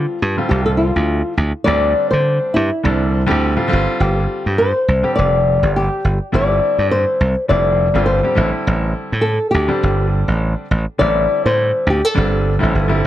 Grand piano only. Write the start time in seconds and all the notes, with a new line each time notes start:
Already playing: D3 G3 C4 F4
0.37 D3 G3 C4 F4
1.65 D3 G3 C4 D4
2.83 D3 G3 C4 D4
3.26 D3 G3 C4 G4
3.57 D3 G3 C4 F4
3.68 D3 G3 C4 F4
5.03 D3 G3 C4 G4
6.32 D3 G3 C4 E4
7.48 D3 G3 C4 E4
7.94 D3 G3 C4 F4
8.23 D3 G3 C4 G4
8.35 D3 G3 C4 E4
9.68 D3 G3 C4 D4
10.98 D3 G3 C4 E4
12.14 D3 G3 C4 D4
12.59 D3 G3 C4 E4
12.88 D3 G3 C4 E4